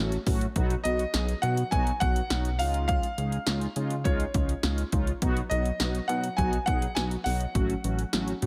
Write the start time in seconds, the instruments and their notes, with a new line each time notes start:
Already playing: analog synth bass A1, analog polysynth F#3 A3 C#4 F#4, grand piano C#5
0.12 closed hi-hat
0.27 analog synth bass A1, analog polysynth F#3 A3 C#4 F#4, kick, open hi-hat
0.41 closed hi-hat
0.56 analog synth bass B1, analog polysynth F#3 B3 D#4 F#4, kick, closed hi-hat
0.70 closed hi-hat
0.84 analog synth bass B1, analog polysynth F#3 B3 D#4 F#4, grand piano D#5, closed hi-hat
0.99 closed hi-hat
1.14 analog synth bass B1, analog polysynth F#3 B3 D#4 G#4, snare, closed hi-hat
1.28 closed hi-hat
1.42 analog synth bass B2, analog polysynth F#3 B3 D#4 F#4, grand piano F#5, closed hi-hat
1.57 closed hi-hat
1.71 analog synth bass B1, analog polysynth F#3 B3 D#4 F#4, grand piano G#5, kick, closed hi-hat
1.87 closed hi-hat
2.00 analog synth bass B1, analog polysynth F#3 B3 D#4 F#4, grand piano F#5, kick, closed hi-hat
2.16 closed hi-hat
2.30 analog synth bass B1, analog polysynth F#3 B3 D#4 F#4, snare, closed hi-hat
2.45 closed hi-hat
2.59 analog synth bass C#2, analog polysynth G#3 C#4 D#4 F4, grand piano F5, open hi-hat
2.74 closed hi-hat
2.88 grand piano F5, kick, closed hi-hat
3.03 closed hi-hat
3.18 analog synth bass C#2, analog polysynth G#3 C#4 D#4 G#4, closed hi-hat
3.32 closed hi-hat
3.47 analog synth bass C#2, analog polysynth G#3 C#4 D#4 F4, snare, closed hi-hat
3.61 closed hi-hat
3.76 analog synth bass C#3, analog polysynth G#3 C#4 D#4 F4, closed hi-hat
3.90 closed hi-hat
4.04 analog synth bass C#2, analog polysynth G#3 C#4 D#4 F4, grand piano C#5, kick, closed hi-hat
4.20 closed hi-hat
4.34 analog synth bass C#2, analog polysynth G#3 C#4 D#4 F4, kick, closed hi-hat
4.49 closed hi-hat
4.63 analog synth bass C#2, analog polysynth G#3 C#4 D#4 F4, snare, closed hi-hat
4.78 closed hi-hat
4.92 analog synth bass C#2, analog polysynth G#3 C#4 D#4 F4, kick, closed hi-hat
5.07 closed hi-hat
5.22 analog synth bass B1, analog polysynth F#3 B3 D#4 F#4, kick, closed hi-hat
5.37 closed hi-hat
5.50 analog synth bass B1, analog polysynth F#3 B3 D#4 F#4, grand piano D#5, closed hi-hat
5.65 closed hi-hat
5.80 analog synth bass B1, analog polysynth F#3 B3 D#4 F#4, snare, closed hi-hat
5.95 closed hi-hat
6.08 analog synth bass B2, analog polysynth F#3 B3 D#4 F#4, grand piano F#5, closed hi-hat
6.24 closed hi-hat
6.37 analog synth bass B1, analog polysynth F#3 B3 D#4 F#4, grand piano G#5, kick, closed hi-hat
6.53 closed hi-hat
6.66 analog synth bass B1, analog polysynth F#3 B3 D#4 G#4, grand piano F#5, kick, closed hi-hat
6.82 closed hi-hat
6.95 analog synth bass B1, analog polysynth F#3 B3 D#4 F#4, grand piano G#5, snare, closed hi-hat
7.11 closed hi-hat
7.24 analog synth bass B1, analog polysynth F#3 B3 D#4 F#4, grand piano F#5, open hi-hat
7.40 closed hi-hat
7.55 analog synth bass A1, analog polysynth F#3 A3 C#4 F#4, kick, closed hi-hat
7.70 closed hi-hat
7.84 analog synth bass A1, analog polysynth F#3 A3 C#4 F#4, closed hi-hat
7.99 closed hi-hat
8.13 analog synth bass A1, analog polysynth F#3 A3 C#4 F#4, snare, closed hi-hat
8.28 closed hi-hat
8.42 analog synth bass A2, analog polysynth F#3 A3 C#4 F#4, closed hi-hat